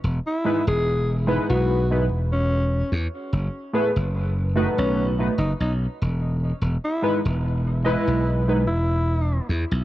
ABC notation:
X:1
M:4/4
L:1/16
Q:"Swing 16ths" 1/4=73
K:E
V:1 name="Alto saxophone"
z E2 G2 z2 F2 z2 C3 z2 | z6 z C z2 D D z4 | z E2 z3 E2 z2 E4 z2 |]
V:2 name="Synth keys"
z2 [G,DEB] z3 [G,DEB]3 [G,DEB] z6 | z2 [A,EGB] z3 [A,DFB]3 [A,DFB] z6 | z2 [G,DEB] z3 [G,EBd]3 [G,DEB] z6 |]
V:3 name="Slap bass" clef=bass
E,,, z2 E,,,3 z B,,,3 E,,,3 z E,, z | F,,, z2 F,,,3 z B,,,2 z F,,, B,,, z E,,,2 z | E,,, z2 E,,,3 z B,,,3 E,,,3 z E,, B,,, |]